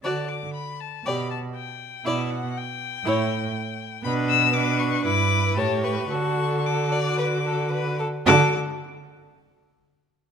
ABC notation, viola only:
X:1
M:4/4
L:1/8
Q:1/4=117
K:D
V:1 name="Viola"
F z3 G z3 | E z3 E z3 | D2 D2 E2 G2 | F2 F4- F z |
F z6 z |]